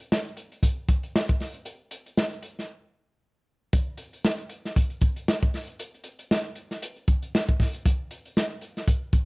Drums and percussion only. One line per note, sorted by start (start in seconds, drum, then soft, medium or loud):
0.00 closed hi-hat medium
0.12 snare loud
0.27 closed hi-hat soft
0.37 closed hi-hat medium
0.52 closed hi-hat soft
0.63 kick medium
0.63 closed hi-hat loud
0.89 kick loud
0.89 closed hi-hat medium
1.03 closed hi-hat medium
1.16 snare loud
1.29 kick loud
1.29 closed hi-hat soft
1.40 snare soft
1.40 open hi-hat medium
1.54 closed hi-hat medium
1.65 closed hi-hat loud
1.91 closed hi-hat medium
2.06 closed hi-hat soft
2.17 snare loud
2.33 closed hi-hat soft
2.43 closed hi-hat medium
2.59 snare soft
2.59 closed hi-hat soft
3.73 kick loud
3.73 closed hi-hat medium
3.97 closed hi-hat medium
4.13 closed hi-hat medium
4.25 snare loud
4.39 closed hi-hat soft
4.49 closed hi-hat medium
4.65 snare soft
4.65 closed hi-hat soft
4.76 kick loud
4.76 closed hi-hat loud
4.90 closed hi-hat soft
5.01 kick medium
5.01 closed hi-hat medium
5.16 closed hi-hat medium
5.28 snare loud
5.43 kick loud
5.54 snare soft
5.54 open hi-hat medium
5.68 closed hi-hat medium
5.79 closed hi-hat loud
5.94 closed hi-hat soft
6.04 closed hi-hat medium
6.19 closed hi-hat medium
6.31 snare loud
6.55 closed hi-hat medium
6.71 snare soft
6.71 closed hi-hat soft
6.82 closed hi-hat loud
6.96 closed hi-hat soft
7.08 kick loud
7.08 closed hi-hat medium
7.22 closed hi-hat medium
7.35 snare loud
7.49 kick loud
7.60 kick medium
7.60 snare soft
7.60 open hi-hat medium
7.74 closed hi-hat medium
7.86 kick loud
7.86 closed hi-hat loud
8.11 closed hi-hat medium
8.25 closed hi-hat medium
8.37 snare loud
8.61 closed hi-hat medium
8.77 snare soft
8.77 closed hi-hat medium
8.88 kick loud
8.88 closed hi-hat loud
9.13 kick loud
9.13 closed hi-hat medium